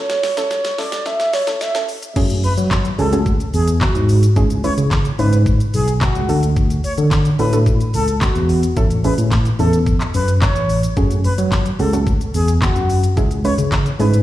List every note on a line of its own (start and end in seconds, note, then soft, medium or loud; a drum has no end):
0.00 0.29 C#4 medium
0.00 0.29 E4 medium
0.00 0.30 A4 medium
0.00 0.80 C#5 loud
0.10 snare loud
0.10 closed hi-hat medium
0.10 shaker medium
0.23 snare loud
0.23 open hi-hat medium
0.23 shaker medium
0.37 0.71 C#4 medium
0.37 0.71 E4 medium
0.37 0.71 A4 medium
0.37 snare loud
0.37 closed hi-hat medium
0.37 shaker medium
0.51 kick loud
0.51 snare loud
0.51 shaker medium
0.65 snare loud
0.65 closed hi-hat medium
0.65 shaker medium
0.78 1.01 C#4 medium
0.78 1.01 E4 medium
0.78 1.01 A4 medium
0.78 1.07 D5 loud
0.78 snare loud
0.78 open hi-hat medium
0.78 shaker soft
0.92 snare loud
0.92 closed hi-hat medium
0.92 shaker medium
1.06 1.39 C#4 medium
1.06 1.40 E4 medium
1.06 1.40 A4 medium
1.06 1.35 E5 loud
1.06 kick loud
1.06 snare loud
1.06 shaker medium
1.20 snare loud
1.20 closed hi-hat medium
1.20 shaker medium
1.33 1.63 C#5 loud
1.33 snare loud
1.33 open hi-hat medium
1.33 shaker medium
1.47 1.70 C#4 medium
1.47 1.70 E4 medium
1.47 1.70 A4 medium
1.47 snare loud
1.47 closed hi-hat medium
1.47 shaker medium
1.61 1.89 E5 loud
1.61 snare loud
1.61 shaker medium
1.75 2.08 C#4 medium
1.75 2.08 E4 medium
1.75 2.09 A4 medium
1.75 snare loud
1.75 closed hi-hat soft
1.75 shaker medium
1.89 open hi-hat medium
1.89 shaker medium
2.02 closed hi-hat medium
2.02 shaker medium
2.16 2.46 F#2 loud
2.16 2.83 A3 medium
2.16 2.83 C#4 medium
2.16 2.83 F#4 medium
2.16 2.83 G#4 loud
2.16 kick loud
2.16 crash loud
2.16 shaker medium
2.30 closed hi-hat medium
2.30 shaker medium
2.44 2.53 B4 medium
2.44 open hi-hat medium
2.44 shaker medium
2.58 2.88 F#3 loud
2.58 closed hi-hat medium
2.58 shaker medium
2.71 kick loud
2.71 snare loud
2.71 clap loud
2.71 shaker medium
2.85 closed hi-hat medium
2.85 shaker medium
2.98 3.39 C#2 loud
2.98 3.10 A3 medium
2.98 3.10 C#4 medium
2.98 3.10 F#4 medium
2.98 3.10 G#4 medium
2.98 3.18 A4 medium
2.98 open hi-hat medium
2.98 shaker medium
3.12 4.02 A3 medium
3.12 4.02 C#4 medium
3.12 4.02 F#4 medium
3.12 4.02 G#4 medium
3.12 closed hi-hat medium
3.12 shaker medium
3.26 kick loud
3.26 shaker medium
3.40 closed hi-hat medium
3.40 shaker medium
3.54 3.84 E2 medium
3.54 3.73 G#4 medium
3.54 open hi-hat medium
3.54 shaker medium
3.68 closed hi-hat medium
3.68 shaker medium
3.81 4.20 F#4 medium
3.81 kick loud
3.81 snare medium
3.81 clap loud
3.81 shaker medium
3.95 4.25 G#2 loud
3.95 closed hi-hat medium
3.95 shaker medium
4.09 open hi-hat medium
4.09 shaker medium
4.23 closed hi-hat medium
4.23 shaker medium
4.36 4.67 C#2 loud
4.36 4.59 G#3 medium
4.36 4.59 C#4 medium
4.36 4.59 E4 medium
4.36 4.59 G#4 loud
4.36 kick loud
4.36 shaker medium
4.50 closed hi-hat medium
4.50 shaker medium
4.64 5.09 G#3 medium
4.64 5.09 C#4 medium
4.64 5.09 E4 medium
4.64 5.09 B4 medium
4.64 4.73 C#5 medium
4.64 open hi-hat medium
4.64 shaker medium
4.78 5.08 C#3 loud
4.78 closed hi-hat medium
4.78 shaker medium
4.91 kick loud
4.91 snare loud
4.91 clap loud
4.91 shaker medium
5.05 closed hi-hat medium
5.05 shaker medium
5.19 5.59 G#2 loud
5.19 6.08 G#3 medium
5.19 6.08 C#4 medium
5.19 6.09 E4 medium
5.19 5.38 B4 medium
5.19 6.09 B4 medium
5.19 open hi-hat medium
5.19 shaker soft
5.33 closed hi-hat medium
5.33 shaker medium
5.46 kick loud
5.46 shaker medium
5.60 closed hi-hat medium
5.60 shaker medium
5.74 6.04 B1 medium
5.74 5.93 G#4 medium
5.74 open hi-hat medium
5.74 shaker medium
5.88 closed hi-hat medium
5.88 shaker medium
6.01 6.40 F#4 loud
6.01 kick loud
6.01 snare medium
6.01 clap loud
6.01 shaker medium
6.15 6.25 C#2 loud
6.15 closed hi-hat soft
6.15 shaker medium
6.29 6.79 D2 loud
6.29 7.18 A3 medium
6.29 7.18 D4 medium
6.29 7.19 F#4 medium
6.29 7.19 A4 medium
6.29 open hi-hat medium
6.29 shaker medium
6.43 closed hi-hat medium
6.43 shaker medium
6.57 kick loud
6.57 shaker medium
6.70 closed hi-hat medium
6.70 shaker medium
6.84 6.94 C#5 medium
6.84 open hi-hat medium
6.84 shaker medium
6.98 7.28 D3 loud
6.98 closed hi-hat medium
6.98 shaker medium
7.11 kick loud
7.11 snare loud
7.11 clap loud
7.11 shaker medium
7.25 closed hi-hat medium
7.25 shaker medium
7.39 7.79 A2 loud
7.39 7.50 A3 medium
7.39 7.50 D4 medium
7.39 7.50 F#4 medium
7.39 7.50 A4 medium
7.39 7.58 B4 medium
7.39 open hi-hat medium
7.39 shaker medium
7.53 8.42 A3 medium
7.53 8.42 D4 medium
7.53 8.42 F#4 medium
7.53 8.43 A4 medium
7.53 closed hi-hat medium
7.53 shaker medium
7.66 kick loud
7.66 shaker medium
7.80 closed hi-hat medium
7.80 shaker medium
7.94 8.24 C#2 loud
7.94 8.13 A4 medium
7.94 open hi-hat medium
7.94 shaker medium
8.08 closed hi-hat medium
8.08 shaker medium
8.21 8.61 F#4 medium
8.21 kick loud
8.21 snare loud
8.21 clap loud
8.21 shaker medium
8.35 8.66 E2 loud
8.35 closed hi-hat medium
8.35 shaker medium
8.49 open hi-hat medium
8.49 shaker medium
8.63 closed hi-hat medium
8.63 shaker medium
8.76 9.07 A1 loud
8.76 8.99 A3 medium
8.76 8.99 C#4 medium
8.76 8.99 E4 medium
8.76 8.99 A4 loud
8.76 kick loud
8.76 shaker medium
8.91 closed hi-hat medium
8.91 shaker medium
9.04 9.49 A3 medium
9.04 9.49 C#4 medium
9.04 9.49 E4 medium
9.04 9.49 G#4 medium
9.04 9.14 B4 medium
9.04 open hi-hat medium
9.04 shaker medium
9.18 9.48 A2 loud
9.18 closed hi-hat medium
9.18 shaker medium
9.31 kick loud
9.31 snare loud
9.31 clap loud
9.31 shaker medium
9.45 closed hi-hat medium
9.45 shaker medium
9.59 9.99 E2 loud
9.59 10.49 A3 medium
9.59 10.49 C#4 medium
9.59 10.49 E4 medium
9.59 9.78 A4 medium
9.59 10.49 A4 medium
9.59 open hi-hat medium
9.59 shaker soft
9.73 closed hi-hat medium
9.73 shaker medium
9.86 kick loud
9.86 shaker medium
10.01 clap medium
10.01 closed hi-hat medium
10.01 shaker medium
10.14 10.44 F#2 medium
10.14 10.33 B4 medium
10.14 open hi-hat medium
10.14 shaker medium
10.28 closed hi-hat medium
10.28 shaker medium
10.42 10.81 C#5 medium
10.42 kick loud
10.42 snare loud
10.42 clap loud
10.42 shaker medium
10.56 10.86 A1 medium
10.56 closed hi-hat medium
10.56 shaker medium
10.69 open hi-hat medium
10.69 shaker medium
10.83 closed hi-hat medium
10.83 shaker medium
10.97 11.27 F#2 loud
10.97 11.64 A3 medium
10.97 11.64 C#4 medium
10.97 11.64 F#4 medium
10.97 11.64 G#4 loud
10.97 kick loud
10.97 shaker medium
11.11 closed hi-hat medium
11.11 shaker medium
11.24 11.34 B4 medium
11.24 open hi-hat medium
11.24 shaker medium
11.38 11.68 F#3 loud
11.38 closed hi-hat medium
11.38 shaker medium
11.52 kick loud
11.52 snare loud
11.52 clap loud
11.52 shaker medium
11.66 closed hi-hat medium
11.66 shaker medium
11.79 12.20 C#2 loud
11.79 11.91 A3 medium
11.79 11.91 C#4 medium
11.79 11.91 F#4 medium
11.79 11.91 G#4 medium
11.79 11.98 A4 medium
11.79 open hi-hat medium
11.79 shaker soft
11.93 12.83 A3 medium
11.93 12.83 C#4 medium
11.93 12.83 F#4 medium
11.93 12.83 A4 medium
11.93 closed hi-hat medium
11.93 shaker medium
12.07 kick loud
12.07 shaker medium
12.21 closed hi-hat medium
12.21 shaker medium
12.34 12.65 E2 medium
12.34 12.53 G#4 medium
12.34 open hi-hat medium
12.34 shaker medium
12.48 closed hi-hat medium
12.48 shaker medium
12.62 13.01 F#4 medium
12.62 kick loud
12.62 snare loud
12.62 clap loud
12.62 shaker medium
12.76 13.06 F#2 loud
12.76 closed hi-hat medium
12.76 shaker medium
12.90 open hi-hat medium
12.90 shaker medium
13.04 closed hi-hat medium
13.04 shaker medium
13.17 13.47 C#2 loud
13.17 13.39 G#3 loud
13.17 13.39 C#4 medium
13.17 13.39 E4 medium
13.17 13.40 G#4 loud
13.17 kick loud
13.17 shaker medium
13.31 closed hi-hat medium
13.31 shaker medium
13.44 13.89 G#3 medium
13.44 13.89 C#4 medium
13.44 13.89 E4 medium
13.44 13.89 B4 medium
13.44 13.54 C#5 medium
13.44 open hi-hat medium
13.44 shaker medium
13.58 13.88 C#3 medium
13.58 closed hi-hat medium
13.58 shaker medium
13.72 kick loud
13.72 snare loud
13.72 clap loud
13.72 shaker medium
13.86 closed hi-hat medium
13.86 shaker medium
13.99 14.23 G#2 loud
13.99 14.23 G#3 medium
13.99 14.23 C#4 medium
13.99 14.23 E4 medium
13.99 14.23 G#4 medium
13.99 14.18 B4 medium
13.99 open hi-hat medium
13.99 shaker soft
14.14 closed hi-hat medium
14.14 shaker medium